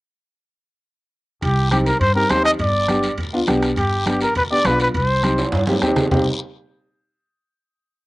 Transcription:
1.42 C2 G4, bombo low, high conga, high timbale, long guiro
1.71 C4 D#4 G4, bombo rim, high conga, high timbale, short guiro
1.86 A#4, high timbale, short guiro
2.00 G2 C5, bombo low, high conga, high timbale, long guiro
2.15 C4 D#4 G4 A#4
2.29 D#2 C4 D#4 G4 C5, bombo rim, high conga, high timbale, low timbale, short guiro
2.45 D#5, bombo rim, high timbale, short guiro
2.59 G1 D5, bombo low, high conga, high timbale, long guiro
2.88 B3 D4 G4, bombo rim, high conga, high timbale, short guiro
3.03 high timbale, short guiro
3.18 D2, bombo low, high conga, high timbale, long guiro
3.33 B3 D4 F4
3.47 B1 B3 D4 G4, bombo rim, high conga, high timbale, short guiro
3.63 bombo rim, high timbale, short guiro
3.76 G1 G4, bombo low, high conga, high timbale, long guiro
4.06 B3 D4 G4, bombo rim, high conga, high timbale, short guiro
4.21 A#4, high timbale, short guiro
4.35 D2 B4, bombo low, high conga, high timbale, long guiro
4.51 B3 D4 G4 D5
4.65 B1 B3 D4 F4 B4, bombo rim, high conga, high timbale, low timbale, short guiro
4.79 B4, high timbale, short guiro
4.94 C2 C5, bombo low, high conga, high timbale, long guiro
5.23 C4 D#4 G4, bombo rim, high conga, high timbale, short guiro
5.38 high timbale, short guiro
5.52 G2, bombo low, high conga, high timbale, long guiro
5.67 C4 D#4 G4, high conga, low timbale
5.82 D#2 C4 D#4 G4, bombo rim, low timbale, short guiro
5.96 bombo rim, low conga, low timbale, short guiro
6.11 C2 C4 D#4 G4, bombo low, low conga, low timbale, long guiro

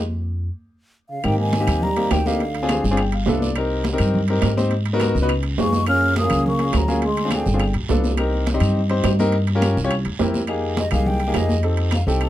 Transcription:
Already playing: F2
1.09 C#3 F5
1.24 G#2 D#3 A#3 C4 D#4 G4 G5, high conga, high timbale, long guiro, claves
1.39 D#3 G#5, high conga
1.53 high conga, high timbale, low timbale, short guiro
1.60 A#3 C4 D#4 G4
1.67 D#2, low conga, high timbale, short guiro, claves
1.82 G3 A#5, high conga, low conga, long guiro
1.97 A#3 C4 D#4 G4, high conga, high timbale
2.11 D2 D#3 G5, high conga, high timbale, low timbale, short guiro, claves
2.26 D3 A#3 C4 D#4 G4 F5, high conga, short guiro
2.40 high conga, high timbale, long guiro
2.55 high conga, high timbale
2.63 C4 D4 F4 G#4
2.69 high conga, high timbale, low timbale, short guiro, claves
2.84 G1 G#5, high conga, short guiro
2.91 C4 D4 F4 G#4
2.97 G5, high conga, high timbale, long guiro, claves
3.12 F5, high conga, high timbale
3.26 C2 B3 D4 F4 A4 E5, high conga, low timbale, short guiro
3.42 D5, high conga, short guiro
3.56 C4 D#4 G4 A#4, high conga, high timbale, long guiro, claves
3.70 high conga
3.84 high conga, high timbale, low timbale, short guiro
3.93 C4 D#4 G4 A#4
3.98 G2, low conga, high timbale, short guiro, claves
4.14 high conga, low conga, long guiro
4.28 C4 D#4 G4 A#4, high conga, high timbale
4.42 G#2, high conga, high timbale, low timbale, short guiro, claves
4.57 C4 D#4 G4 C5, high conga, short guiro
4.71 high conga, high timbale, long guiro
4.86 high conga, high timbale
4.93 B3 D#4 F#4 A#4
5.00 high conga, high timbale, low timbale, short guiro, claves
5.15 C#2, high conga, short guiro
5.22 B3 D#4 F#4 B4
5.29 high conga, high timbale, long guiro, claves
5.43 high conga, high timbale
5.58 F#2 G#3 B3 D#4 F4 G#4 C#6, high conga, low timbale, short guiro
5.73 high conga, short guiro
5.86 A#3 C#4 F4 G#4 F6, high conga, high timbale, long guiro, claves
6.02 high conga
6.16 A#3 D#6, high conga, high timbale, low timbale, short guiro
6.23 A#3 C#4 F4 G#4
6.30 C#2, low conga, high timbale, short guiro, claves
6.46 A#3 C#6, high conga, low conga, long guiro
6.58 A#3 C#4 F4 G#4, high conga, high timbale
6.73 D2 F#3, high conga, high timbale, low timbale, short guiro, claves
6.77 A#5
6.88 A#3 C#4 F4 G#4, high conga, short guiro
7.02 G#3 C6, high conga, high timbale, long guiro
7.17 high conga, high timbale
7.25 C4 D4 F4 G#4
7.31 D3 G5, high conga, high timbale, low timbale, short guiro, claves
7.46 G1, high conga, short guiro
7.54 C4 D4 F4 G#4
7.60 high conga, high timbale, long guiro, claves
7.74 B1, high conga, high timbale
7.89 C2 B3 D4 F4 A4, high conga, low timbale, short guiro
8.04 high conga, short guiro
8.17 C4 D#4 G4 A#4, high conga, high timbale, long guiro, claves
8.33 high conga
8.47 high conga, high timbale, low timbale, short guiro
8.54 C4 D#4 G4 C5
8.60 G2, low conga, high timbale, short guiro, claves
8.75 high conga, long guiro
8.90 C4 D#4 G4 C5, high conga, high timbale
9.04 G2, high conga, high timbale, low timbale, short guiro, claves
9.19 C4 D#4 G4 A#4, high conga, short guiro
9.32 high conga, high timbale, long guiro
9.47 high conga, high timbale
9.55 C#4 F4 G4 A#4
9.62 high conga, high timbale, low timbale, short guiro, claves
9.77 C2, high conga, short guiro
9.84 C#4 F4 G4 C#5
9.91 high conga, high timbale, long guiro, claves
10.05 E2, high conga, high timbale
10.19 F2 C4 E4 G4 A#4, high conga, low timbale, short guiro
10.34 high conga, short guiro
10.47 A#3 D#4 G4 G#4, high conga, high timbale, long guiro, claves
10.63 high conga
10.77 D#5, high conga, high timbale, low timbale, short guiro
10.91 C2 A#3 D#4 G4 G#4 F5, low conga, high timbale, short guiro, claves
11.06 G5, high conga, low conga, long guiro
11.20 high conga, high timbale
11.27 A#3 D#4 G4 G#4
11.34 F2 D#5, high conga, high timbale, low timbale, short guiro, claves
11.49 high conga, short guiro
11.63 C4 D#4 G4 A4, high conga, high timbale, long guiro
11.77 high conga, high timbale
11.91 F5, high conga, high timbale, low timbale, short guiro, claves
12.07 C2 C4 D#4 G4 A4 G5, high conga, short guiro
12.21 A5, high conga, high timbale, long guiro, claves

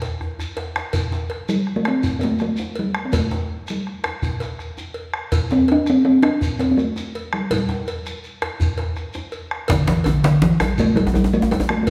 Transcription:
0.02 cowbell, djembe slap, shekere
0.21 bombo rim, djembe bass
0.39 bombo rim, djembe bass, shekere
0.57 bombo rim, cowbell, djembe slap
0.76 bombo rim, djembe slap, shekere
0.93 bombo low, cowbell, djembe bass, shekere
1.12 djembe slap, djembe tone, shekere
1.30 bombo rim, cowbell, djembe slap
1.49 G3, bombo rim, shekere
1.67 bombo rim, djembe slap
1.76 A3
1.85 C4, bombo rim, cowbell
2.03 bombo low, djembe bass, shekere
2.19 C4, cowbell, shekere
2.23 A3, djembe slap
2.39 A3, bombo rim, shekere
2.57 djembe slap, djembe tone, shekere
2.76 G3, cowbell
2.95 bombo rim
3.05 C4
3.13 A3, bombo low, cowbell, djembe bass, shekere
3.30 djembe slap, djembe tone, shekere
3.50 djembe slap
3.68 G3, bombo rim, shekere
3.86 bombo rim, djembe slap
4.04 bombo rim, cowbell, djembe tone
4.22 bombo low, djembe bass, shekere
4.40 cowbell, djembe slap, shekere
4.59 bombo rim, shekere
4.78 djembe slap, djembe tone, shekere
4.94 cowbell
5.14 bombo rim
5.32 bombo low, cowbell, djembe bass, shekere
5.51 C4, djembe slap, djembe tone, shekere
5.68 D4, bombo rim, cowbell, djembe slap
5.86 C4, bombo rim, shekere
6.05 C4, bombo rim, djembe slap
6.22 D4, bombo rim, cowbell, djembe tone
6.41 bombo low, djembe bass, shekere
6.59 C4, cowbell, djembe slap, shekere
6.71 C4
6.77 A3, shekere
6.96 djembe slap, djembe tone, shekere
7.15 cowbell
7.33 G3, bombo rim
7.50 G3, bombo low, cowbell, djembe bass, shekere
7.69 bombo rim, djembe slap, djembe tone, shekere
7.87 cowbell, shekere
8.05 bombo rim, djembe slap, shekere
8.24 shekere
8.42 bombo rim, cowbell, djembe tone
8.60 bombo low, djembe bass, shekere
8.78 bombo rim, cowbell, djembe slap
8.96 bombo rim, djembe slap, shekere
9.13 bombo rim, djembe slap, djembe tone, shekere
9.32 cowbell, djembe slap, shekere
9.51 bombo rim
9.68 D3, bombo low, cowbell, djembe slap, djembe bass, shekere
9.87 E3, djembe slap, djembe tone, shekere
10.04 D3, bombo rim, cowbell, djembe tone, shekere
10.24 D3, djembe slap, shekere
10.42 E3, djembe slap, djembe tone
10.60 G3, bombo rim, cowbell, djembe tone, shekere
10.78 A3, bombo low, djembe bass, shekere
10.96 G3, bombo rim, cowbell, djembe slap, djembe tone
11.07 djembe tone
11.14 G3, djembe slap, djembe tone, shekere
11.24 djembe tone
11.33 A3, shekere
11.42 djembe tone
11.51 G3, cowbell, djembe tone
11.60 djembe tone
11.69 A3, bombo rim, djembe slap
11.83 A3

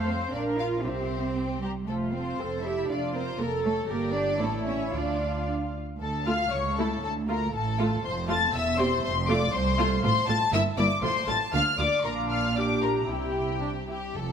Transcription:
Already playing: F2 C5 F5
0.09 C4 C5
0.33 A#1 D4 A#4 D5 F5
0.59 F4 F5
0.84 C2 C4 G4 C5 E5
1.37 G5
1.63 G3 G4 A#5
1.88 F1 A3 F4 A4 C5
2.14 C4 A4 C5
2.40 F1 A4 C5
2.64 E4 G4 A4 E5
2.90 F1 D4 F4 D5
3.15 C4 A#4 C5
3.39 F1 A#3 A4 A#4
3.65 A3 A4 C#5
3.89 G1 A#3 G4 A#4 D5
4.14 D4 D5
4.40 A1 A3 E4 A4 C#5
4.66 C#4 C#5 E5
4.93 D2 D4 F4 D5 F5
6.00 D2 A4 A5
6.26 A3 F4 F5 F6
6.52 C#2 C#5 C#6
6.78 A3 E4 A4 A5
7.03 D2 A4 A5
7.29 A3 F4 A#4 A#5
7.54 A1 A2 A4 A5
7.79 A3 F4
8.04 F1 F2 C5 C6
8.28 A3 F4 A5 A6
8.53 E1 E2 E5 E6
8.78 C4 G4 C5 C6
9.03 F1 F2 C5 C6
9.29 A3 F4 D5 D6
9.53 C2 C5 C6
9.79 A3 F4
10.04 A1 A2 A3 F4 C5 C6
10.28 A1 A2 A3 F4 A5 A6
10.52 G1 G2 A#3 E4 E5 E6
10.77 G1 G2 A#3 E4 D5 D6
11.03 A1 A2 A3 F4 C5 C6
11.27 A1 A2 A3 F4 A5 A6
11.53 D2 D3 A#3 F4 F5 F6
11.78 D2 D3 A#3 F4 D5 D6
12.04 A#1 A#2 D4 F4 A#4 A#5
12.30 F5 F6
12.55 D4 G4 D5 D6
12.82 A#4 A#5
13.08 C2 C3 E4 G4 G5
13.61 D4
13.89 E4 G4
14.15 F1 F2 A4

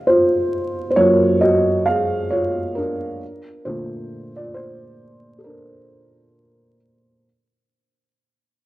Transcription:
0.07 F4 C5
0.91 C5
0.96 F#2 F#3 A#3 F4 C#5
1.41 F#4 D#5
1.86 G#4 F5
2.30 F4 C#5
2.75 D4 A#4
3.65 A#2 D3 A3 F4 C5
4.36 F4 D5
4.54 F4 C5
5.38 A4
5.44 D4 A#4

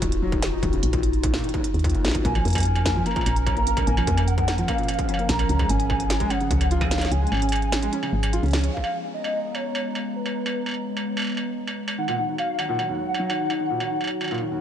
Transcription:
Already playing: D#4 F4 F#4
0.02 D#1, kick, closed hi-hat
0.12 closed hi-hat
0.22 F#3
0.32 D#3, kick, closed hi-hat
0.42 D#3, snare, closed hi-hat
0.53 D#4
0.63 D#1 D#3, kick, closed hi-hat
0.73 C#3, closed hi-hat
0.83 A#1 D#3, closed hi-hat
0.93 D#3, kick, closed hi-hat
1.03 closed hi-hat
1.13 closed hi-hat
1.23 D#3, kick, closed hi-hat
1.34 A#2, snare, closed hi-hat
1.39 closed hi-hat
1.44 D#3, closed hi-hat
1.49 closed hi-hat
1.54 D#2, kick, closed hi-hat
1.64 closed hi-hat
1.74 D#2, closed hi-hat
1.79 closed hi-hat
1.84 D#3, kick, closed hi-hat
1.90 closed hi-hat
1.95 F#1 D#2, closed hi-hat
2.05 A#1 A#3, snare
2.08 snare
2.11 D#3, kick, snare, closed hi-hat
2.25 A#1 F3 A#3 C#4 A#4 G#5, kick, closed hi-hat
2.35 F3, closed hi-hat, struck metal
2.45 F2 A#3, closed hi-hat
2.48 closed hi-hat
2.50 closed hi-hat
2.53 A#3, kick, closed hi-hat
2.55 closed hi-hat, struck metal
2.58 closed hi-hat
2.60 closed hi-hat
2.63 closed hi-hat
2.76 closed hi-hat, struck metal
2.86 A#3, kick, snare, closed hi-hat
2.96 F3
3.06 A#3 A#5, closed hi-hat, struck metal
3.11 struck metal
3.16 A#2, kick, closed hi-hat, struck metal
3.21 struck metal
3.26 A#1, closed hi-hat, struck metal
3.36 closed hi-hat
3.46 C#4 A#5, kick, closed hi-hat, struck metal
3.57 A#3, closed hi-hat
3.67 A#3, closed hi-hat
3.77 A#4, kick, closed hi-hat, struck metal
3.87 A#1 A#3 G#5, closed hi-hat
3.97 F3, closed hi-hat, struck metal
4.07 F2 A#3, kick, closed hi-hat
4.17 A#3, closed hi-hat, struck metal
4.27 F#5, closed hi-hat
4.38 kick, closed hi-hat
4.48 A#3, snare, closed hi-hat, struck metal
4.58 F3, closed hi-hat
4.68 A#3 F5, kick, closed hi-hat, struck metal
4.78 A#2, closed hi-hat
4.83 closed hi-hat
4.88 closed hi-hat, struck metal
4.94 closed hi-hat
4.99 kick, closed hi-hat
5.09 C#4, closed hi-hat
5.14 struck metal
5.19 A#3, closed hi-hat
5.29 A#1 A#3 A#5, kick, snare, closed hi-hat
5.39 A#4, closed hi-hat, struck metal
5.49 C#2 C#4 G#4, closed hi-hat
5.59 G#3, kick, closed hi-hat, struck metal
5.69 G#1 C#4 G#5, closed hi-hat
5.80 C#4, closed hi-hat
5.90 kick, struck metal
6.00 closed hi-hat
6.10 C#4, snare, closed hi-hat
6.20 G#3, kick, closed hi-hat
6.30 C#4 F#5, closed hi-hat, struck metal
6.40 C#3, closed hi-hat
6.51 C#2, kick, closed hi-hat
6.61 closed hi-hat, struck metal
6.71 F4 F5, closed hi-hat
6.81 C#4, kick, closed hi-hat, struck metal
6.91 C#4, snare, closed hi-hat
6.98 C#5, snare, closed hi-hat, struck metal
7.05 snare
7.11 C#2 C#4 G#5, closed hi-hat
7.22 G#3
7.27 closed hi-hat
7.32 G#1 C#4, struck metal
7.34 struck metal
7.37 struck metal
7.39 C#4, closed hi-hat, struck metal
7.49 closed hi-hat
7.52 closed hi-hat, struck metal
7.56 closed hi-hat
7.62 closed hi-hat
7.72 C#4, snare, closed hi-hat, struck metal
7.82 G#3, closed hi-hat
7.93 C#4, closed hi-hat
8.03 C#3, struck metal
8.13 G#1
8.23 closed hi-hat, struck metal
8.33 F4, closed hi-hat
8.43 C#2 C#4, closed hi-hat
8.46 closed hi-hat
8.48 closed hi-hat
8.51 C#4, snare, closed hi-hat
8.53 closed hi-hat
8.56 closed hi-hat
8.59 closed hi-hat
8.61 C#5, closed hi-hat
8.64 closed hi-hat
8.73 G#3 B3 F5 A#5, kick
8.84 struck metal
9.14 D#5
9.24 struck metal
9.55 C#5, struck metal
9.75 struck metal
9.95 struck metal
10.15 B4
10.26 struck metal
10.46 struck metal
10.66 struck metal
10.69 struck metal
10.71 struck metal
10.74 struck metal
10.97 struck metal
11.17 struck metal
11.19 struck metal
11.22 struck metal
11.24 struck metal
11.27 struck metal
11.30 struck metal
11.32 struck metal
11.35 struck metal
11.37 struck metal
11.68 struck metal
11.88 struck metal
11.98 D#3 F#3 D#4 F#4 F#5
12.08 A#2, struck metal
12.18 D#3
12.28 D#3
12.38 F5, struck metal
12.59 D#3 F#5, struck metal
12.69 A#2
12.79 D#3, struck metal
12.89 D#2
13.14 struck metal
13.19 F#3
13.30 D#3, struck metal
13.40 D#3
13.50 D#4, struck metal
13.60 D#3
13.70 A#2
13.80 D#3, struck metal
13.90 D#3
14.01 struck metal
14.04 struck metal
14.07 struck metal
14.21 D#3, struck metal
14.24 struck metal
14.28 A#2, struck metal
14.31 struck metal
14.34 struck metal
14.38 D#3, struck metal
14.51 D#2

